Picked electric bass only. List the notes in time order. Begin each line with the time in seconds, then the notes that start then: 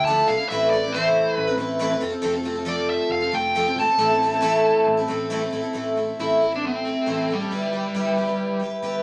Already playing: D2
0.29 B1
0.51 A1
1.38 A1
1.57 A1
2.02 F1
2.24 F1
3.10 F1
3.33 F1
3.76 G#1
3.98 A1
4.87 A1
5.10 A1
5.53 A1
5.75 A1
6.19 A1
7.07 A1
7.52 G1
7.95 G1
8.83 G1